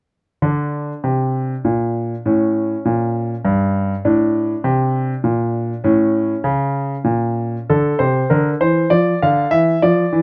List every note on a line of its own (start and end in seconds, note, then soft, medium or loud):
0.42 0.91 D3 medium
0.42 2.22 D4 soft
1.04 1.53 C3 soft
1.65 2.13 A#2 soft
2.26 2.73 A2 soft
2.26 4.01 C#4 soft
2.85 3.33 A#2 medium
3.45 3.92 G2 medium
4.05 4.52 A2 medium
4.05 5.80 D4 soft
4.64 5.12 C3 medium
5.24 5.72 A#2 medium
5.84 6.33 A2 medium
5.84 7.66 C#4 soft
6.44 6.94 C#3 medium
7.04 7.56 A#2 soft
7.70 7.92 D3 soft
7.70 8.01 A4 medium
7.99 8.22 C3 soft
7.99 8.30 C5 medium
8.30 8.53 D3 medium
8.30 8.48 A#4 soft
8.61 8.83 E3 soft
8.61 8.91 C5 medium
8.90 9.13 F3 soft
8.90 9.18 D5 medium
9.22 9.44 D3 soft
9.22 9.52 F5 medium
9.51 9.73 E3 medium
9.51 9.82 E5 medium
9.82 10.04 F3 soft
9.82 10.22 D5 medium
10.13 10.22 E3 medium